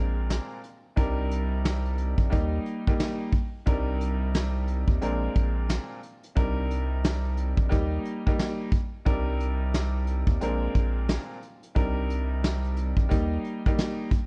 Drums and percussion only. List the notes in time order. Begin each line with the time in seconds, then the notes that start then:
0.30 snare, closed hi-hat
0.64 closed hi-hat
0.97 kick, closed hi-hat
1.31 closed hi-hat
1.65 snare, closed hi-hat
1.85 closed hi-hat
1.98 closed hi-hat
2.18 kick
2.32 kick, closed hi-hat
2.66 closed hi-hat
2.87 kick
3.00 snare, closed hi-hat
3.33 kick, open hi-hat
3.67 kick, closed hi-hat
4.01 closed hi-hat
4.34 snare, closed hi-hat
4.68 closed hi-hat
4.88 kick
5.02 closed hi-hat
5.35 kick, closed hi-hat
5.69 snare, closed hi-hat
6.03 closed hi-hat
6.23 closed hi-hat
6.37 kick, closed hi-hat
6.71 closed hi-hat
7.04 snare, closed hi-hat
7.25 closed hi-hat
7.37 closed hi-hat
7.57 kick
7.71 kick, closed hi-hat
8.05 closed hi-hat
8.27 kick
8.39 snare, closed hi-hat
8.72 kick, closed hi-hat
9.06 kick, closed hi-hat
9.40 closed hi-hat
9.74 snare, closed hi-hat
10.07 closed hi-hat
10.27 kick
10.41 closed hi-hat
10.75 kick, closed hi-hat
11.09 snare, closed hi-hat
11.43 closed hi-hat
11.63 closed hi-hat
11.76 kick, closed hi-hat
12.10 closed hi-hat
12.44 snare, closed hi-hat
12.64 closed hi-hat
12.77 closed hi-hat
12.97 kick
13.11 kick, closed hi-hat
13.44 closed hi-hat
13.66 kick, closed hi-hat
13.78 snare, closed hi-hat
14.11 kick, closed hi-hat